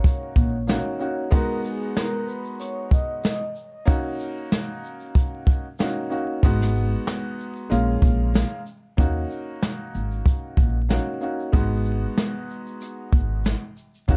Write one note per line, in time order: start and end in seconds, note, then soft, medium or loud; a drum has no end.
0.00 0.54 A#3 medium
0.00 0.55 C#4 medium
0.00 0.55 D#4 medium
0.00 0.55 F#4 loud
0.00 1.28 C#5 medium
0.00 1.28 C#6 medium
0.04 kick loud
0.04 closed hi-hat loud
0.04 shaker medium
0.36 0.76 A#1 loud
0.36 kick medium
0.36 shaker medium
0.67 0.98 A#3 medium
0.67 0.98 C#4 medium
0.67 0.98 D#4 medium
0.67 0.98 F#4 medium
0.67 snare loud
0.67 closed hi-hat medium
0.67 shaker medium
0.99 1.29 A#3 medium
0.99 1.30 C#4 medium
0.99 1.30 D#4 medium
0.99 1.30 F#4 medium
0.99 shaker medium
1.31 3.39 G#3 loud
1.31 3.39 B3 medium
1.31 3.39 D#4 medium
1.31 3.39 F#4 loud
1.31 1.61 A#4 loud
1.31 1.61 A#5 medium
1.31 kick loud
1.31 closed hi-hat loud
1.31 shaker medium
1.64 1.93 G#4 medium
1.64 1.94 G#5 medium
1.64 closed hi-hat medium
1.64 shaker medium
1.82 shaker soft
1.96 2.25 A#4 medium
1.96 2.25 A#5 medium
1.96 snare loud
1.96 closed hi-hat medium
1.96 shaker medium
2.27 2.56 B4 medium
2.27 2.57 B5 medium
2.27 shaker soft
2.30 shaker medium
2.45 shaker medium
2.59 2.89 C#5 medium
2.59 2.89 C#6 medium
2.59 closed hi-hat loud
2.59 shaker medium
2.91 3.21 D#5 medium
2.91 3.22 D#6 medium
2.91 kick medium
2.91 closed hi-hat medium
2.91 shaker medium
3.23 3.53 D#5 medium
3.23 3.53 D#6 medium
3.23 snare loud
3.23 closed hi-hat medium
3.23 shaker medium
3.55 shaker medium
3.85 5.64 A#3 loud
3.85 5.65 C#4 medium
3.85 5.65 D#4 loud
3.85 5.65 F#4 loud
3.85 kick loud
3.85 closed hi-hat loud
3.85 shaker medium
4.19 closed hi-hat medium
4.19 shaker medium
4.37 shaker soft
4.51 snare loud
4.51 closed hi-hat medium
4.51 shaker medium
4.83 shaker soft
4.85 shaker medium
5.00 shaker medium
5.15 kick loud
5.15 closed hi-hat loud
5.15 shaker medium
5.47 kick loud
5.47 closed hi-hat medium
5.47 shaker medium
5.79 6.08 A#3 medium
5.79 6.09 C#4 medium
5.79 6.09 D#4 medium
5.79 6.10 F#4 medium
5.79 snare loud
5.79 closed hi-hat medium
5.79 shaker medium
6.10 6.40 A#3 medium
6.10 6.40 C#4 medium
6.10 6.41 D#4 medium
6.10 6.41 F#4 medium
6.10 shaker medium
6.43 6.94 G#1 loud
6.43 7.68 G#3 medium
6.43 7.71 B3 loud
6.43 7.71 D#4 medium
6.43 7.71 F#4 loud
6.43 kick loud
6.43 closed hi-hat loud
6.43 shaker medium
6.61 snare soft
6.75 shaker medium
6.93 shaker soft
7.07 snare loud
7.07 closed hi-hat medium
7.07 shaker medium
7.39 shaker soft
7.39 shaker medium
7.56 shaker medium
7.70 7.96 A#1 loud
7.70 8.59 G#3 medium
7.70 8.59 A#3 medium
7.70 8.60 C#4 medium
7.70 8.60 F4 loud
7.70 closed hi-hat loud
7.70 shaker medium
8.02 8.42 A#1 loud
8.02 kick loud
8.02 closed hi-hat medium
8.02 shaker medium
8.34 snare loud
8.34 closed hi-hat medium
8.34 shaker medium
8.66 shaker medium
8.97 9.24 D#2 loud
8.97 10.76 A#3 medium
8.97 10.76 C#4 medium
8.97 10.76 D#4 medium
8.97 10.76 F#4 loud
8.97 kick loud
8.97 closed hi-hat loud
8.97 shaker medium
9.30 shaker medium
9.62 snare loud
9.62 closed hi-hat medium
9.62 shaker medium
9.94 10.20 G#1 medium
9.94 shaker soft
9.96 shaker medium
10.11 shaker medium
10.26 kick medium
10.26 closed hi-hat loud
10.26 shaker medium
10.57 10.97 A#1 loud
10.57 kick medium
10.57 shaker medium
10.89 11.19 A#3 medium
10.89 11.19 C#4 medium
10.89 11.20 D#4 medium
10.89 11.20 F#4 medium
10.89 snare loud
10.89 closed hi-hat medium
10.89 shaker medium
11.21 11.51 A#3 medium
11.21 11.51 C#4 medium
11.21 11.52 D#4 medium
11.21 11.52 F#4 medium
11.21 shaker medium
11.39 shaker soft
11.52 12.04 G#1 loud
11.52 13.60 G#3 loud
11.52 13.60 B3 medium
11.52 13.61 D#4 medium
11.52 13.61 F#4 loud
11.52 kick loud
11.52 closed hi-hat loud
11.52 shaker medium
11.85 shaker medium
12.17 snare loud
12.17 closed hi-hat medium
12.17 shaker medium
12.49 shaker soft
12.51 shaker medium
12.66 shaker medium
12.81 closed hi-hat loud
12.81 shaker medium
13.12 13.52 G#1 loud
13.12 kick medium
13.12 shaker medium
13.44 snare loud
13.44 closed hi-hat medium
13.44 shaker medium
13.77 shaker medium
13.95 shaker soft
14.08 14.17 D#2 loud
14.08 14.17 A#3 medium
14.08 14.17 C#4 medium
14.08 14.17 D#4 medium
14.08 14.17 F#4 loud
14.08 kick loud
14.08 closed hi-hat loud
14.08 shaker medium